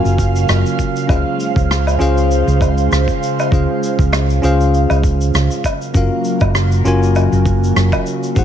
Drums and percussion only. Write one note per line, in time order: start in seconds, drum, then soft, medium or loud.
0.05 shaker soft
0.18 kick medium
0.18 shaker medium
0.36 shaker medium
0.49 cross-stick medium
0.49 low woodblock medium
0.49 shaker medium
0.66 shaker soft
0.79 kick medium
0.79 shaker medium
0.96 shaker medium
1.09 kick loud
1.09 low woodblock medium
1.09 shaker medium
1.40 shaker medium
1.56 kick loud
1.56 shaker soft
1.71 cross-stick medium
1.71 shaker medium
1.87 low woodblock medium
1.87 shaker soft
2.01 shaker medium
2.17 shaker soft
2.31 shaker medium
2.48 shaker soft
2.61 kick medium
2.61 low woodblock medium
2.61 shaker medium
2.78 shaker medium
2.92 cross-stick medium
2.92 shaker medium
3.08 kick medium
3.08 shaker soft
3.23 shaker medium
3.39 low woodblock medium
3.39 shaker soft
3.52 kick loud
3.52 shaker medium
3.83 shaker medium
3.99 kick loud
3.99 shaker soft
4.13 cross-stick medium
4.13 low woodblock medium
4.13 shaker soft
4.30 shaker soft
4.43 shaker medium
4.61 shaker soft
4.74 shaker soft
4.90 low woodblock medium
4.90 shaker soft
5.04 kick medium
5.04 shaker medium
5.21 shaker soft
5.34 cross-stick medium
5.34 shaker medium
5.51 shaker soft
5.64 kick medium
5.64 low woodblock medium
5.64 shaker medium
5.82 shaker soft
5.94 kick loud
5.94 shaker medium
6.25 shaker medium
6.40 kick loud
6.40 low woodblock medium
6.40 shaker soft
6.55 cross-stick medium
6.55 shaker medium
6.72 shaker soft
6.86 shaker medium
7.03 shaker soft
7.15 low woodblock medium
7.15 shaker medium
7.33 shaker medium
7.46 kick medium
7.46 shaker medium
7.64 shaker medium
7.76 cross-stick medium
7.76 shaker medium
7.92 kick medium
7.92 low woodblock medium
7.92 shaker soft
8.06 shaker medium
8.23 shaker soft
8.36 kick loud
8.36 shaker medium